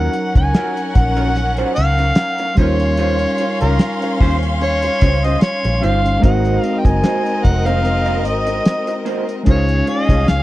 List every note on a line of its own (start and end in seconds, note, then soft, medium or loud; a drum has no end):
0.00 0.12 F#3 medium
0.00 2.52 F#3 medium
0.00 0.12 C#4 medium
0.00 2.53 C#4 medium
0.00 2.54 C#4 medium
0.00 2.54 D#4 medium
0.00 0.12 F4 medium
0.00 0.12 A#4 medium
0.00 2.54 A#4 medium
0.00 2.56 A#4 medium
0.00 0.36 F#5 loud
0.00 2.54 F#5 loud
0.13 closed hi-hat medium
0.35 0.51 C#2 medium
0.35 0.89 G#5 medium
0.35 muted clean electric guitar stroke soft
0.35 kick loud
0.35 closed hi-hat medium
0.54 0.71 F#3 medium
0.54 0.72 C#4 medium
0.54 0.72 F4 medium
0.54 0.72 A#4 medium
0.54 snare loud
0.54 closed hi-hat medium
0.77 closed hi-hat medium
0.89 0.96 G#5 medium
0.95 1.63 A#1 medium
0.95 1.59 F#5 loud
0.95 muted clean electric guitar stroke soft
0.95 kick loud
0.95 closed hi-hat medium
1.17 1.29 F#3 soft
1.17 1.29 C#4 medium
1.17 1.28 F4 medium
1.17 1.28 A#4 medium
1.17 closed hi-hat medium
1.35 muted clean electric guitar stroke soft
1.35 snare soft
1.35 closed hi-hat medium
1.57 1.73 F#3 medium
1.57 1.73 C#4 medium
1.57 1.72 F4 medium
1.57 1.72 C5 medium
1.57 closed hi-hat medium
1.76 2.11 C#2 medium
1.76 2.53 F5 loud
1.76 muted clean electric guitar stroke soft
1.76 closed hi-hat medium
1.98 muted clean electric guitar stroke soft
1.98 closed hi-hat medium
2.15 snare loud
2.15 closed hi-hat medium
2.38 muted clean electric guitar stroke soft
2.38 closed hi-hat medium
2.55 3.25 D#2 loud
2.55 5.77 G3 medium
2.55 5.78 C#4 medium
2.55 2.74 C#4 medium
2.55 6.19 C#4 loud
2.55 5.79 D#4 medium
2.55 2.75 F4 medium
2.55 2.75 G4 medium
2.55 3.57 C#5 loud
2.55 6.19 F5 loud
2.55 6.19 C6 medium
2.55 kick loud
2.55 closed hi-hat medium
2.59 5.80 F4 medium
2.59 5.81 A#4 medium
2.59 2.75 C5 medium
2.80 muted clean electric guitar stroke soft
2.80 closed hi-hat medium
2.97 3.15 C#4 medium
2.97 3.15 F4 medium
2.97 3.15 G4 medium
2.97 3.16 C5 medium
2.97 closed hi-hat medium
3.19 closed hi-hat soft
3.38 muted clean electric guitar stroke soft
3.38 closed hi-hat medium
3.61 3.77 C#2 medium
3.61 3.73 C#4 soft
3.61 3.73 F4 soft
3.61 3.73 G4 medium
3.61 4.16 A#4 medium
3.61 3.72 C#5 medium
3.61 closed hi-hat medium
3.79 muted clean electric guitar stroke soft
3.79 snare medium
3.79 closed hi-hat medium
4.02 muted clean electric guitar stroke soft
4.02 closed hi-hat medium
4.20 4.88 D#2 medium
4.20 4.37 C#4 medium
4.20 4.37 F4 medium
4.20 4.38 G4 medium
4.20 4.36 C5 medium
4.20 4.38 C5 medium
4.20 kick loud
4.20 open hi-hat soft
4.43 muted clean electric guitar stroke soft
4.43 closed hi-hat medium
4.61 5.26 C#5 loud
4.61 muted clean electric guitar stroke soft
4.61 closed hi-hat medium
4.82 muted clean electric guitar stroke soft
4.82 closed hi-hat medium
5.01 5.35 C#2 medium
5.01 5.15 C#4 medium
5.01 5.15 F4 medium
5.01 5.15 G4 medium
5.01 5.16 C5 medium
5.01 kick medium
5.01 closed hi-hat medium
5.24 5.36 C#4 soft
5.24 5.35 F4 soft
5.24 5.35 G4 medium
5.24 5.35 C5 medium
5.24 5.42 D#5 medium
5.24 closed hi-hat medium
5.41 5.85 C#5 medium
5.41 snare loud
5.41 closed hi-hat medium
5.64 5.80 A#1 medium
5.64 muted clean electric guitar stroke soft
5.64 closed hi-hat medium
5.81 6.17 G1 medium
5.81 6.22 G3 soft
5.81 6.23 C#4 soft
5.81 5.99 C#4 medium
5.81 6.22 D#4 soft
5.81 6.23 F4 soft
5.81 5.99 F4 medium
5.81 6.00 G4 medium
5.81 6.24 C5 medium
5.81 6.00 C5 medium
5.81 6.23 F5 medium
5.81 closed hi-hat medium
6.04 muted clean electric guitar stroke soft
6.04 closed hi-hat medium
6.19 9.42 G#3 medium
6.19 6.60 A#3 medium
6.19 9.43 C4 medium
6.19 9.43 C4 loud
6.19 6.60 D#4 medium
6.19 6.61 F#4 medium
6.19 9.44 A#4 loud
6.19 9.44 D#5 loud
6.23 6.57 G#1 loud
6.23 9.44 D#4 medium
6.23 9.44 F#4 medium
6.23 9.45 A#4 medium
6.23 6.61 C5 loud
6.23 6.60 F#5 medium
6.23 kick loud
6.23 closed hi-hat medium
6.45 closed hi-hat soft
6.60 6.81 F5 medium
6.60 closed hi-hat medium
6.80 6.87 G5 medium
6.85 7.01 F#1 loud
6.85 7.46 G#5 medium
6.85 muted clean electric guitar stroke soft
6.85 kick loud
6.85 closed hi-hat medium
7.04 7.20 A#3 medium
7.04 7.21 D#4 medium
7.04 7.21 F#4 medium
7.04 7.21 C5 medium
7.04 snare loud
7.04 closed hi-hat medium
7.26 closed hi-hat medium
7.44 8.26 F1 medium
7.44 7.68 F#5 medium
7.44 muted clean electric guitar stroke soft
7.44 kick loud
7.44 closed hi-hat medium
7.65 7.78 A#3 medium
7.65 7.78 D#4 medium
7.65 7.77 F#4 medium
7.65 7.77 C5 medium
7.65 8.19 F5 medium
7.65 closed hi-hat medium
7.85 muted clean electric guitar stroke soft
7.85 snare soft
7.85 closed hi-hat medium
8.06 8.21 A#3 medium
8.06 8.21 D#4 medium
8.06 8.21 F#4 medium
8.06 8.21 D#5 medium
8.06 closed hi-hat medium
8.19 8.27 F5 medium
8.25 8.59 G#1 medium
8.25 9.07 D#5 medium
8.25 muted clean electric guitar stroke soft
8.25 closed hi-hat medium
8.47 muted clean electric guitar stroke soft
8.47 closed hi-hat medium
8.65 snare loud
8.65 closed hi-hat medium
8.87 muted clean electric guitar stroke soft
8.87 closed hi-hat medium
9.05 9.23 A#3 medium
9.05 9.23 D#4 medium
9.05 9.23 F#4 medium
9.05 9.23 C5 loud
9.05 closed hi-hat medium
9.28 muted clean electric guitar stroke soft
9.28 closed hi-hat medium
9.44 10.43 G#3 medium
9.44 9.64 G#3 medium
9.44 10.43 C#4 medium
9.44 10.43 D#4 medium
9.44 9.64 D#4 medium
9.44 10.43 G#4 medium
9.44 10.43 F5 loud
9.44 kick loud
9.44 closed hi-hat medium
9.48 9.81 C#2 loud
9.48 9.64 F4 medium
9.48 10.43 F4 medium
9.48 9.56 A#4 medium
9.48 9.64 C5 medium
9.48 9.90 C#5 medium
9.57 10.43 C#5 medium
9.69 closed hi-hat medium
9.87 10.30 D#5 loud
9.87 muted clean electric guitar stroke soft
9.87 closed hi-hat medium
10.09 10.25 C2 loud
10.09 10.21 G#3 medium
10.09 10.21 D#4 medium
10.09 10.21 F4 medium
10.09 10.21 C#5 medium
10.09 kick medium
10.09 closed hi-hat medium
10.27 10.43 C#2 medium
10.27 10.43 F5 loud
10.27 muted clean electric guitar stroke soft
10.27 snare loud
10.27 closed hi-hat medium